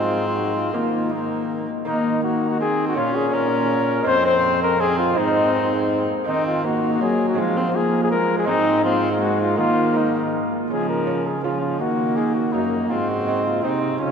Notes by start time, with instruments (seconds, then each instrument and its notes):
Already playing: lute G#2 G#3 C4 D#4, trombone G#2, viola C4
0.00 cornet F4
0.28 cornet F4
0.36 cornet F#4
0.56 cornet F4
0.73 trombone D#3, lute D#3 A#3 D#4, viola A#3, cornet F4
1.09 lute A#3 D#4, viola A#3, cornet D#4
1.85 lute D#3 A#3 D#4, trombone D#3, viola A#3, cornet D#4
2.23 viola A#3, cornet F#4
2.50 cornet F#4
2.61 viola C4, cornet G#4
2.88 cornet F#4
2.94 lute A#2 C#4 F4, trombone A#2, viola C#4, cornet F4
3.15 cornet G#4
3.31 lute C#4 F4, viola C#4, cornet A#4
4.02 trombone F2, lute G#3 C4 F4
4.06 lute F2, viola C4, cornet C5
4.26 cornet C5
4.63 cornet A#4
4.79 viola C4, cornet G#4
4.98 cornet F4
5.14 lute G#2 G#3 C4 D#4, trombone G#2, viola C4
5.18 cornet D#4
6.24 trombone D#3, lute D#3 A#3 D#4, viola C4, cornet D#4
6.47 cornet F4
6.64 viola A#3, cornet F#4
6.93 cornet F#4
7.01 lute F#3, trombone F#3, cornet G#4
7.29 cornet F#4
7.34 lute F3 G#3 C4 G#4
7.38 trombone F3, viola G#3, cornet F4
7.57 viola C4
7.75 viola A#3, cornet G#4
8.03 cornet G#4
8.11 viola G#3, cornet A#4
8.39 cornet G#4
8.44 lute G#2 G#3 C4 D#4, trombone G#2, viola C4, cornet D#4
8.83 viola C4, cornet F4
9.13 cornet F4
9.21 viola G#3, cornet F#4
9.41 cornet F4
9.56 lute D#3 A#3 D#4, trombone D#3, viola A#3, cornet F4
9.94 lute A#3 D#4, cornet D#4
10.70 trombone C#3, lute C#3, viola F3, cornet G#4
10.89 cornet A#4
11.07 lute C#4 F4
11.27 cornet G#4
11.44 viola F3, lute C#4 F4, cornet F4
11.61 cornet F4
11.80 lute D#3, trombone D#3, viola A#3, cornet F#4
12.16 lute A#3 D#4, cornet G#4
12.35 cornet F#4
12.52 lute F#2 A#3 D#4, trombone F#2, viola A#3, cornet D#4
12.89 lute G#2, trombone G#2, viola C4, cornet F4
13.09 cornet F#4
13.27 lute G#3 C4 D#4
13.46 cornet F4
13.64 lute C3 G#3 C4 D#4, trombone C3, viola C4, cornet D#4
13.81 cornet D#4
13.99 lute C#3, trombone C#3, viola C#4, cornet F4